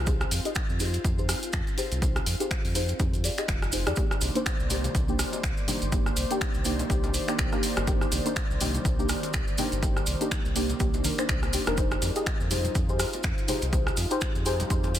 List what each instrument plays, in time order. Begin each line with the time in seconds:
Already playing: analog synth bass C2, analog synth pad C4 F4
0.06 synth stab D#4 G4 G#4 C5, kick, closed hi-hat, maracas
0.21 cross-stick, maracas
0.31 analog synth bass F2, open hi-hat, maracas
0.45 synth stab D#4 G4 G#4 D#5, closed hi-hat, maracas
0.55 finger snap, kick, closed hi-hat, maracas
0.69 analog synth bass F2, maracas
0.80 synth stab D#4 G4 G#4 C5, open hi-hat, maracas
0.94 closed hi-hat, maracas
1.04 analog synth bass F2, kick, closed hi-hat, maracas
1.18 synth stab D#4 G4 G#4 C5, maracas
1.29 cross-stick, open hi-hat, maracas
1.43 closed hi-hat, maracas
1.53 analog synth bass F2, finger snap, kick, closed hi-hat, maracas
1.67 closed hi-hat, maracas
1.77 synth stab D#4 G4 G#4 C5, open hi-hat, maracas
1.92 analog synth bass C2, closed hi-hat, maracas
2.02 synth stab D#4 G4 G#4 C5, kick, closed hi-hat, maracas
2.16 cross-stick, closed hi-hat, maracas
2.26 analog synth bass F2, open hi-hat, maracas
2.40 synth stab D#4 G4 G#4 C5, closed hi-hat, maracas
2.51 finger snap, kick, closed hi-hat, maracas
2.65 analog synth bass F2, open hi-hat, maracas
2.75 synth stab D#4 G4 G#4 C5, open hi-hat, maracas
2.88 closed hi-hat, maracas
2.99 analog synth bass F2, synth stab D#4 G4 G#4 C5, kick, closed hi-hat, maracas
3.13 closed hi-hat, maracas
3.24 synth stab D#4 G4 G#4 D5, open hi-hat, maracas
3.38 synth stab D#4 G4 G#4 D#5, finger snap, closed hi-hat, maracas
3.48 analog synth bass F1, finger snap, kick, closed hi-hat, maracas
3.62 cross-stick, closed hi-hat, maracas
3.72 synth stab D#4 G4 G#4 C5, open hi-hat, maracas
3.86 analog synth bass F2, synth stab D#4 G4 G#4 D5, cross-stick, closed hi-hat, maracas
3.96 analog synth pad D#3 A#3 C5 D5, synth stab A#3 D4 D#4 G4, kick, closed hi-hat, maracas
4.11 cross-stick, maracas
4.21 analog synth bass C2, open hi-hat, high bongo, maracas
4.35 synth stab A#3 D4 D#4 C5, closed hi-hat, maracas
4.46 finger snap, kick, closed hi-hat, maracas
4.60 analog synth bass C2, maracas
4.70 synth stab A#3 D4 D#4 G4, open hi-hat, low conga, maracas
4.84 closed hi-hat, low conga, maracas
4.95 analog synth bass C2, kick, closed hi-hat, high conga, maracas
5.08 synth stab A#3 D4 D#4 G4, maracas
5.19 cross-stick, open hi-hat, maracas
5.33 closed hi-hat, high bongo, maracas
5.43 analog synth bass C2, finger snap, kick, closed hi-hat, maracas
5.57 closed hi-hat, maracas
5.67 synth stab A#3 D4 D#4 G4, open hi-hat, low conga, maracas
5.82 analog synth bass G1, closed hi-hat, maracas
5.92 synth stab A#3 D4 D#4 G4, kick, closed hi-hat, maracas
6.06 cross-stick, maracas
6.17 analog synth bass C2, open hi-hat, maracas
6.30 synth stab A#3 D4 D#4 G4, closed hi-hat, maracas
6.41 finger snap, kick, closed hi-hat, maracas
6.54 analog synth bass C2, closed hi-hat, maracas
6.65 synth stab A#3 D4 D#4 G4, open hi-hat, maracas
6.79 closed hi-hat, low conga, maracas
6.89 analog synth bass C2, synth stab A#3 D4 D#4 G4, kick, closed hi-hat, maracas
7.04 closed hi-hat, high bongo, maracas
7.14 open hi-hat, maracas
7.28 synth stab A#3 D4 D#4 G4, finger snap, closed hi-hat, maracas
7.39 analog synth bass C2, finger snap, kick, closed hi-hat, maracas
7.52 synth stab A#3 D4 D#4 G4, cross-stick, closed hi-hat, high bongo, maracas
7.63 open hi-hat, maracas
7.77 analog synth bass G1, cross-stick, closed hi-hat, high bongo, maracas
7.87 synth stab A#3 D4 D#4 G4, kick, closed hi-hat, maracas
8.01 cross-stick, maracas
8.12 analog synth bass C2, open hi-hat, high bongo, maracas
8.25 synth stab A#3 D4 D#4 C5, closed hi-hat, maracas
8.36 finger snap, kick, closed hi-hat, maracas
8.50 analog synth bass C2, maracas
8.60 synth stab A#3 D4 D#4 G4, open hi-hat, low conga, maracas
8.74 closed hi-hat, low conga, maracas
8.84 analog synth bass C2, kick, closed hi-hat, high conga, maracas
8.98 synth stab A#3 D4 D#4 G4, maracas
9.09 cross-stick, open hi-hat, maracas
9.23 closed hi-hat, high bongo, maracas
9.33 analog synth bass C2, finger snap, kick, closed hi-hat, maracas
9.48 closed hi-hat, maracas
9.58 synth stab A#3 D4 D#4 G4, open hi-hat, low conga, maracas
9.72 analog synth bass G1, closed hi-hat, maracas
9.82 synth stab A#3 D4 D#4 G4, kick, closed hi-hat, maracas
9.97 cross-stick, maracas
10.06 analog synth bass C2, open hi-hat, maracas
10.20 synth stab A#3 D4 D#4 G4, closed hi-hat, maracas
10.31 finger snap, kick, closed hi-hat, high conga, maracas
10.45 analog synth bass C2, closed hi-hat, maracas
10.55 synth stab A#3 D4 D#4 G4, open hi-hat, maracas
10.69 closed hi-hat, low conga, maracas
10.80 analog synth bass C2, synth stab A#3 D4 D#4 G4, kick, closed hi-hat, maracas
10.94 closed hi-hat, high bongo, maracas
11.04 synth stab A#3 D4 D#4 A#4, open hi-hat, high conga, maracas
11.18 synth stab A#3 D4 D#4 C5, finger snap, closed hi-hat, maracas
11.29 analog synth bass C2, finger snap, kick, closed hi-hat, maracas
11.43 cross-stick, closed hi-hat, high bongo, maracas
11.53 synth stab A#3 D4 D#4 G4, open hi-hat, maracas
11.67 analog synth bass F1, synth stab A#3 D4 D#4 A#4, cross-stick, closed hi-hat, high bongo, maracas
11.77 synth stab D#4 G4 G#4 C5, analog synth pad D#4 F4, kick, closed hi-hat, maracas
11.91 cross-stick, maracas
12.02 analog synth bass F2, open hi-hat, high bongo, maracas
12.16 synth stab D#4 G4 G#4 D#5, closed hi-hat, maracas
12.26 finger snap, kick, closed hi-hat, maracas
12.40 analog synth bass F2, maracas
12.50 synth stab D#4 G4 G#4 C5, open hi-hat, low conga, maracas
12.64 closed hi-hat, low conga, maracas
12.75 analog synth bass F2, kick, closed hi-hat, high conga, maracas
12.89 synth stab D#4 G4 G#4 C5, maracas
13.00 cross-stick, open hi-hat, maracas
13.13 closed hi-hat, high bongo, maracas
13.23 analog synth bass F2, finger snap, kick, closed hi-hat, maracas
13.38 closed hi-hat, maracas
13.48 synth stab D#4 G4 G#4 C5, open hi-hat, low conga, maracas
13.62 analog synth bass C2, closed hi-hat, maracas
13.72 synth stab D#4 G4 G#4 C5, kick, closed hi-hat, maracas
13.87 cross-stick, maracas
13.97 analog synth bass F2, open hi-hat, maracas
14.11 synth stab D#4 G4 G#4 C5, closed hi-hat, maracas
14.21 finger snap, kick, closed hi-hat, maracas
14.35 analog synth bass F2, closed hi-hat, maracas
14.45 synth stab D#4 G4 G#4 C5, open hi-hat, maracas
14.60 closed hi-hat, low conga, maracas
14.70 analog synth bass F2, synth stab D#4 G4 G#4 C5, kick, closed hi-hat, maracas
14.84 closed hi-hat, high bongo, maracas
14.95 open hi-hat, maracas